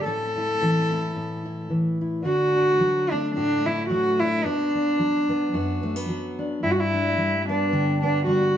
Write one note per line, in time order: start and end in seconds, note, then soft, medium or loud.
0.05 1.14 A2 medium
0.05 0.60 C#4 soft
0.05 0.36 E4 medium
0.05 1.66 A4 medium
0.37 0.91 E4 soft
0.61 1.69 E3 soft
0.61 2.22 C#4 soft
0.92 1.44 E4 soft
1.16 2.22 A2 medium
1.46 2.00 E4 soft
1.70 2.25 E3 soft
2.01 2.22 E4 soft
2.25 4.41 D3 medium
2.25 2.56 D4 medium
2.25 3.12 F#4 loud
2.56 4.21 D4 medium
2.80 3.89 F#3 medium
3.11 3.65 A3 medium
3.11 3.34 D4 medium
3.35 4.42 A2 medium
3.35 3.68 D4 medium
3.35 4.45 F#4 medium
3.66 4.44 A3 medium
3.66 3.88 E4 medium
3.89 4.41 F#3 medium
3.89 4.21 F#4 medium
4.20 4.75 D4 medium
4.20 4.47 E4 medium
4.45 5.54 B2 medium
4.45 6.09 D4 medium
4.45 5.53 F#4 medium
4.75 6.37 D4 soft
4.99 6.07 F#3 medium
5.29 5.83 B3 soft
5.53 6.62 F#2 medium
5.53 6.63 F#4 medium
5.83 5.96 A3 medium
5.96 6.63 B3 soft
6.08 6.60 F#3 medium
6.39 6.60 D4 medium
6.63 8.57 G2 medium
6.63 6.92 D4 medium
6.63 6.72 E4 medium
6.71 6.82 F#4 medium
6.80 7.48 E4 medium
6.94 8.57 D4 medium
7.18 8.25 G3 medium
7.49 8.02 B3 medium
7.49 7.99 D4 medium
7.72 8.57 D3 medium
7.72 8.57 G4 medium
8.02 8.57 B3 medium
8.02 8.25 D4 medium
8.26 8.57 G3 medium
8.26 8.57 F#4 medium